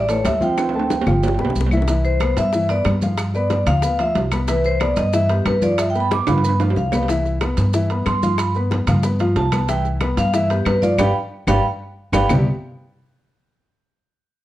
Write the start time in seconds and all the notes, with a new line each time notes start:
Already playing: A1 D5
0.09 E3 A3 A4 C#5 A5, high bongo, high conga, high timbale, maracas
0.24 D2 G3 E5, high bongo, low bongo, high conga, high timbale, low timbale, claves, maracas
0.41 F3 C4 F4 F5 G5, high bongo, high conga, maracas
0.58 high bongo, high conga, high timbale, claves, maracas
0.69 high timbale
0.74 A3 A4 A5, high bongo, high conga
0.79 high timbale
0.90 high bongo, high conga, high timbale, maracas
1.01 low timbale
1.06 G1 F3 F4 F5, high bongo, high conga, low conga, claves, maracas
1.23 high conga, low timbale, maracas
1.28 high bongo
1.34 low timbale
1.39 B1 B3 B4 B5, high bongo, high conga
1.45 low timbale
1.50 low bongo
1.56 C2, high conga, maracas
1.61 low bongo
1.67 low timbale
1.71 E3 E4 E5, high conga, claves, maracas
1.77 low timbale
1.82 low bongo
1.88 E3 E4 E5, high bongo, high timbale, maracas
2.04 C5, high bongo, high conga, maracas
2.20 B3 B4 B5, high bongo, high conga, high timbale, claves, maracas
2.36 G2 E5, high conga, high timbale, maracas
2.53 E3 E4 E5, high bongo, high conga, maracas
2.69 B3 B4 D5 B5, high bongo, high conga, high timbale, maracas
2.85 G2, high bongo, low bongo, high conga, high timbale, low timbale, claves, maracas
3.01 F3 F4 F5, high bongo, high conga, maracas
3.17 high bongo, high conga, high timbale, claves, maracas
3.34 B3 B4 D5 B5, high bongo, high conga, maracas
3.50 high bongo, high conga, high timbale, maracas
3.66 D2 F3 F4 F5, high conga, low conga, high timbale, claves, maracas
3.82 B3 B4 B5, high bongo, high conga, maracas
3.99 F3 F4 E5 F5, high bongo, high conga, high timbale, maracas
4.15 C2, high bongo, low bongo, high conga, high timbale, low timbale, maracas
4.32 B3 B4 B5, high bongo, high conga, high timbale, claves, maracas
4.48 E3 E4 B4 E5, high bongo, high conga, high timbale, maracas
4.64 C5, high bongo, high conga, maracas
4.80 B3 B4 D5 B5, high bongo, high conga, high timbale, claves, maracas
4.96 G2 D#5, high conga, high timbale, maracas
5.13 E3 E4 E5, high bongo, high conga, maracas
5.29 B3 G4 B4 B5, high bongo, high conga, high timbale, maracas
5.45 G2 B4, high bongo, low bongo, high conga, high timbale, low timbale, claves, maracas
5.62 F3 F4 D5 F5, high bongo, high conga, maracas
5.78 E5, high bongo, high conga, high timbale, claves, maracas
5.90 G5
5.95 B3 B4 B5, high bongo, high conga, maracas
6.00 B5
6.11 D6, high bongo, high conga, high timbale, maracas
6.27 G2 F3 F4 F5 B5, high bongo, high conga, low conga, high timbale, claves, maracas
6.38 high timbale
6.43 B3 B4 B5, high conga, maracas
6.48 high timbale
6.60 F3 F4 F5, high conga, high timbale, maracas
6.70 low timbale
6.76 C2 F5, low bongo, high conga, maracas
6.92 B3 B4 B5, low bongo, high conga, low timbale, claves, maracas
7.03 low timbale
7.08 E3 E4 E5, high bongo, high conga, high timbale, maracas
7.25 high bongo, high conga, maracas
7.41 B3 B4 B5, high bongo, high conga, high timbale, claves, maracas
7.57 G2, high conga, high timbale, maracas
7.73 E3 E4 E5, high bongo, high conga, maracas
7.90 B3 B4 B5, high bongo, high conga, high timbale, maracas
8.06 G2 C6, high bongo, low bongo, high conga, high timbale, claves, maracas
8.22 F3 F4 F5, high bongo, high conga, maracas
8.38 B5, high bongo, high conga, high timbale, claves, maracas
8.54 B3 B4 B5, high bongo, high conga, maracas
8.71 high bongo, high conga, high timbale, maracas
8.87 G2 F3 F4 F5, high conga, low conga, high timbale, claves, maracas
9.03 B3 B4 B5, high bongo, high conga, maracas
9.19 F3 F4 F5, high bongo, high conga, high timbale, maracas
9.36 C2 A5, high bongo, low bongo, high conga, high timbale, low timbale, maracas
9.52 B3 B4 B5, high bongo, high conga, high timbale, claves, maracas
9.69 E3 E4 E5 G5, high bongo, high conga, high timbale, maracas
9.85 high bongo, high conga, maracas
10.01 B3 B4 B5, high bongo, high conga, high timbale, claves, maracas
10.17 G2 F5, high conga, high timbale, maracas
10.34 E3 E4 E5, high bongo, high conga, maracas
10.50 B3 G4 B4 B5, high bongo, high conga, high timbale, maracas
10.65 G2 B4, high bongo, low bongo, high conga, high timbale, low timbale, claves, maracas
10.82 F3 F4 D5 F5, high bongo, high conga, maracas
10.98 G1 G4 B4 D5 F5 G5 B5, low bongo, high conga, high timbale, claves, maracas
11.47 G1 G4 B4 D5 F5 G5 B5, low bongo, high conga, high timbale, claves, maracas
12.12 G1 G4 B4 D5 F5 G5 B5, low bongo, high conga, high timbale, claves, maracas
12.29 C2 C3 G3 B3 C4 E4 G4, low bongo, low conga, low timbale, claves, maracas